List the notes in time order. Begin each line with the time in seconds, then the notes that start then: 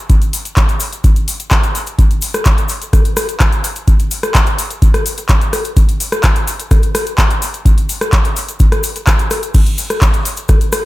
0.10 kick, closed hi-hat, cabasa
0.22 closed hi-hat, cabasa
0.33 open hi-hat, cabasa
0.45 closed hi-hat, cabasa
0.57 kick, clap, closed hi-hat, cabasa
0.69 closed hi-hat, cabasa
0.80 open hi-hat, cabasa
0.93 closed hi-hat, cabasa
1.04 kick, closed hi-hat, cabasa
1.16 closed hi-hat, cabasa
1.28 open hi-hat, cabasa
1.40 closed hi-hat, cabasa
1.51 kick, clap, closed hi-hat, cabasa
1.63 closed hi-hat, cabasa
1.75 open hi-hat, cabasa
1.87 closed hi-hat, cabasa
1.99 kick, closed hi-hat, cabasa
2.11 closed hi-hat, cabasa
2.22 open hi-hat, cabasa
2.34 cross-stick, closed hi-hat, cabasa
2.45 kick, clap, closed hi-hat, cabasa
2.58 closed hi-hat, cabasa
2.68 open hi-hat, cabasa
2.82 closed hi-hat, cabasa
2.93 kick, cross-stick, closed hi-hat, cabasa
3.05 closed hi-hat, cabasa
3.17 cross-stick, open hi-hat, cabasa
3.29 closed hi-hat, cabasa
3.40 kick, clap, closed hi-hat, cabasa
3.52 closed hi-hat, cabasa
3.64 open hi-hat, cabasa
3.76 closed hi-hat, cabasa
3.88 kick, closed hi-hat, cabasa
3.99 closed hi-hat, cabasa
4.11 open hi-hat, cabasa
4.23 cross-stick, closed hi-hat, cabasa
4.35 kick, clap, closed hi-hat, cabasa
4.46 closed hi-hat, cabasa
4.58 open hi-hat, cabasa
4.71 closed hi-hat, cabasa
4.82 kick, closed hi-hat, cabasa
4.94 cross-stick, closed hi-hat, cabasa
5.06 open hi-hat, cabasa
5.18 closed hi-hat, cabasa
5.29 kick, clap, closed hi-hat, cabasa
5.41 closed hi-hat, cabasa
5.53 cross-stick, open hi-hat, cabasa
5.64 closed hi-hat, cabasa
5.77 kick, closed hi-hat, cabasa
5.89 closed hi-hat, cabasa
6.00 open hi-hat, cabasa
6.12 cross-stick, closed hi-hat, cabasa
6.23 kick, clap, closed hi-hat, cabasa
6.36 closed hi-hat, cabasa
6.47 open hi-hat, cabasa
6.60 closed hi-hat, cabasa
6.71 kick, cross-stick, closed hi-hat, cabasa
6.83 closed hi-hat, cabasa
6.95 cross-stick, open hi-hat, cabasa
7.06 closed hi-hat, cabasa
7.18 kick, clap, closed hi-hat, cabasa
7.30 closed hi-hat, cabasa
7.42 open hi-hat, cabasa
7.54 closed hi-hat, cabasa
7.66 kick, closed hi-hat, cabasa
7.78 closed hi-hat, cabasa
7.89 open hi-hat, cabasa
8.01 cross-stick, closed hi-hat, cabasa
8.13 kick, clap, closed hi-hat, cabasa
8.25 closed hi-hat, cabasa
8.36 open hi-hat, cabasa
8.48 closed hi-hat, cabasa
8.59 kick, closed hi-hat, cabasa
8.72 cross-stick, closed hi-hat, cabasa
8.83 open hi-hat, cabasa
8.96 closed hi-hat, cabasa
9.07 kick, clap, closed hi-hat, cabasa
9.19 closed hi-hat, cabasa
9.30 cross-stick, open hi-hat, cabasa
9.43 closed hi-hat, cabasa
9.54 kick, closed hi-hat, crash, cabasa
9.67 closed hi-hat, cabasa
9.78 open hi-hat, cabasa
9.90 cross-stick, closed hi-hat, cabasa
10.02 kick, clap, closed hi-hat, cabasa
10.14 closed hi-hat, cabasa
10.25 open hi-hat, cabasa
10.37 closed hi-hat, cabasa
10.49 kick, cross-stick, closed hi-hat, cabasa
10.61 closed hi-hat, cabasa
10.72 cross-stick, open hi-hat, cabasa